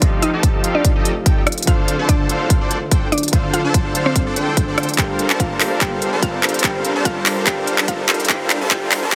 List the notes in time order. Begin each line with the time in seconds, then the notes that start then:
Already playing: F1 G4 A4 D#5, riser
0.00 F3 D#4 F4 G4 A4 D#5 F5, kick, closed hi-hat
0.22 D#4 D#5, closed hi-hat
0.33 F3 D#4 G4 A4 A5
0.43 kick, closed hi-hat
0.62 F3 D#4 F4 G4 A4 F5, closed hi-hat
0.66 F5
0.75 D4 D5
0.85 kick, closed hi-hat
0.95 F3 D#4 G4 A4 D#5
1.05 closed hi-hat
1.26 F3 D#4 G4 A4 G5, kick, closed hi-hat
1.47 cross-stick, closed hi-hat
1.52 closed hi-hat
1.58 closed hi-hat
1.63 D3 D4, closed hi-hat
1.67 D1 D3 D4 F4 A4 C5 F5, kick, closed hi-hat
1.88 closed hi-hat
1.99 D3 D4 A4 C5 A5
2.09 D4 D5, kick, closed hi-hat
2.27 D3 D4 F4 A4 C5 F5, closed hi-hat
2.31 C5
2.50 kick, closed hi-hat
2.61 D3 D4 A4 C5 D5
2.71 closed hi-hat
2.91 D3 D4 A4 C5 G5, kick, closed hi-hat
3.12 D4 D5, closed hi-hat
3.18 closed hi-hat
3.23 closed hi-hat
3.28 D3 D4, closed hi-hat
3.33 D3 D4 F4 A4 C5 F5, kick, closed hi-hat
3.54 F4 F5, closed hi-hat
3.64 D3 D4 A4 C5 A5
3.74 kick, closed hi-hat
3.93 D3 D4 F4 A4 C5 F5, closed hi-hat
4.06 C4 C5
4.16 kick, closed hi-hat
4.27 D3 D4 A4 C5 D5
4.36 D3 D4 A4 C5 G5, closed hi-hat
4.57 kick, closed hi-hat
4.68 D3 D4 A4 C5 D5
4.77 D3 D4 F4 A4 C5 F5 G5, cross-stick, closed hi-hat
4.83 closed hi-hat
4.89 closed hi-hat
4.94 G3 D4, closed hi-hat
4.98 G1 G3 D4 F4 G4 A4 A#4 C5 F5 G5, kick, clap, closed hi-hat
5.19 closed hi-hat
5.30 G3 D4 A4 A#4 C5 A5, clap
5.40 F4 F5, kick, closed hi-hat
5.59 G3 D4 F4 A4 A#4 C5 F5, clap, open hi-hat
5.79 G3 D4 F4 G4 A4 A#4 G5, kick, clap, closed hi-hat
5.83 C5
6.02 closed hi-hat
6.13 G3 D4 A4 A#4 C5 A5
6.22 F4 F5, kick, closed hi-hat
6.41 G3 D4 F4 A4 A#4 C5 F5, clap, closed hi-hat
6.45 C5, closed hi-hat
6.54 closed hi-hat
6.59 G3 D4, closed hi-hat
6.64 G3 D4 F4 G4 A4 A#4 C5 F5 G5, kick, clap
6.85 closed hi-hat
6.96 G3 D4 A4 A#4 C5 A5
7.05 F4 F5, kick, closed hi-hat
7.24 G3 D4 F4 A4 A#4 C5 F5, clap, open hi-hat
7.45 G3 D4 F4 G4 A4 A#4 G5, kick, clap, closed hi-hat
7.49 C5
7.67 closed hi-hat
7.78 G3 D4 A4 A#4 C5 A5, clap
7.88 F4 F5, kick, closed hi-hat
8.07 G1 G3 D4 F4 A4 A#4 C5 F5, clap, closed hi-hat
8.11 C5, closed hi-hat
8.20 closed hi-hat
8.25 G3 D4, closed hi-hat
8.29 F4 G4 A4 A#4 C5 F5 G5, kick, clap, closed hi-hat
8.50 clap, closed hi-hat
8.61 G3 D4 A4 A#4 C5 A5
8.69 G3 D4 F4 G4 A4 A#4 C5 F5 G5, kick, clap, closed hi-hat
8.92 clap, open hi-hat
9.03 G3 D4 A4 A#4 C5 A5
9.10 G3